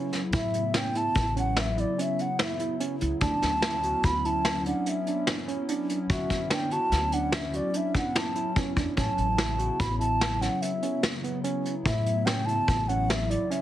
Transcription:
Already playing: analog synth pad C#3 F#3 B3 E4, tine electric piano C#4
0.13 snare, closed hi-hat
0.32 upright bass A2, tine electric piano E4, flute E5, kick, closed hi-hat
0.54 closed hi-hat
0.74 tine electric piano C#4, flute G5, snare, closed hi-hat
0.95 tine electric piano E4, flute A5, closed hi-hat
1.15 upright bass A1, kick, closed hi-hat
1.36 tine electric piano C#4, flute F#5, closed hi-hat
1.56 flute E5, snare, closed hi-hat
1.77 tine electric piano E4, flute D5, closed hi-hat
1.98 tine electric piano C#4, flute E5, closed hi-hat
2.19 flute F#5, closed hi-hat
2.39 tine electric piano E4, flute E5, snare, closed hi-hat
2.60 tine electric piano E4, closed hi-hat
2.80 tine electric piano C#4, closed hi-hat
3.01 upright bass C#2, tine electric piano E4, closed hi-hat
3.21 upright bass D2, analog synth pad F#3 B3 C#4 E4, tine electric piano D4, flute A5, kick, closed hi-hat
3.42 upright bass D2, snare, closed hi-hat
3.62 tine electric piano E4, snare, closed hi-hat
3.83 tine electric piano F#4, closed hi-hat
4.03 upright bass D2, flute B5, kick, closed hi-hat
4.25 tine electric piano E4, flute A5, closed hi-hat
4.45 snare, closed hi-hat
4.66 tine electric piano D4, flute F#5, closed hi-hat
4.86 flute E5, closed hi-hat
5.07 tine electric piano D4, closed hi-hat
5.27 snare, closed hi-hat
5.48 tine electric piano C#4, closed hi-hat
5.69 tine electric piano D4, closed hi-hat
5.89 closed hi-hat
6.10 upright bass D3, tine electric piano F#4, flute E5, kick, closed hi-hat
6.30 kick, snare, closed hi-hat
6.50 tine electric piano D4, flute G5, snare, closed hi-hat
6.71 tine electric piano F#4, flute A5, closed hi-hat
6.92 upright bass D2, snare, closed hi-hat
7.12 tine electric piano D4, flute F#5, closed hi-hat
7.32 flute E5, snare, closed hi-hat
7.53 tine electric piano F#4, flute D5, closed hi-hat
7.74 tine electric piano D4, flute E5, closed hi-hat
7.94 flute F#5, kick, closed hi-hat
8.15 tine electric piano E4, flute A5, snare, closed hi-hat
8.35 tine electric piano E4, closed hi-hat
8.56 tine electric piano C#4, kick, closed hi-hat
8.76 upright bass E2, tine electric piano D4, kick, closed hi-hat
8.97 upright bass A1, analog synth pad C#3 F#3 B3 E4, tine electric piano C#4, flute A5, kick, closed hi-hat
9.18 upright bass A1, closed hi-hat
9.38 tine electric piano E4, snare, closed hi-hat
9.59 tine electric piano F#4, closed hi-hat
9.80 upright bass A1, flute B5, kick, closed hi-hat
9.99 tine electric piano E4, flute A5, closed hi-hat
10.21 snare, closed hi-hat
10.41 tine electric piano C#4, flute F#5, snare, closed hi-hat
10.62 flute E5, closed hi-hat
10.83 tine electric piano C#4, closed hi-hat
11.03 snare, closed hi-hat
11.24 tine electric piano B3, closed hi-hat
11.44 tine electric piano C#4, closed hi-hat
11.65 closed hi-hat
11.86 upright bass A2, tine electric piano E4, flute E5, kick, closed hi-hat
12.06 closed hi-hat
12.26 tine electric piano C#4, flute G5, snare, closed hi-hat
12.46 tine electric piano E4, flute A5, closed hi-hat
12.68 upright bass A1, kick, closed hi-hat
12.88 tine electric piano C#4, flute F#5, closed hi-hat
13.10 flute E5, snare, closed hi-hat
13.30 tine electric piano E4, flute D5, closed hi-hat
13.50 tine electric piano C#4, flute E5, closed hi-hat

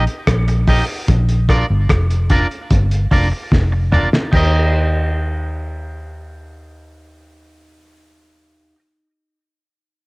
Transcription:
0.07 closed hi-hat
0.27 fingered electric bass A#1, kick, cross-stick, closed hi-hat
0.48 muted clean electric guitar stroke, closed hi-hat
0.67 clean electric guitar D#4 G4 A#4 D#5, kick, open hi-hat
1.08 fingered electric bass A#1, kick, closed hi-hat
1.29 closed hi-hat
1.49 clean electric guitar D4 F4 A#4 D5, kick, cross-stick, closed hi-hat
1.70 fingered electric bass G1
1.89 fingered electric bass F1, kick, cross-stick, closed hi-hat
2.10 closed hi-hat
2.30 clean electric guitar D4 F4 A#4 D5, kick, closed hi-hat
2.51 closed hi-hat
2.70 fingered electric bass G1, kick, closed hi-hat
2.91 closed hi-hat
3.11 fingered electric bass F1, clean electric guitar D4 F4 A#4 D5, kick, open hi-hat
3.32 muted clean electric guitar stroke
3.52 fingered electric bass F1, kick, snare
3.72 muted clean electric guitar stroke
3.92 clean electric guitar D4 F4 A#4 D5, mid tom
4.13 snare
4.32 fingered electric bass D#2, clean electric guitar D#4 G4 A#4, kick, crash
4.37 clean electric guitar D#5

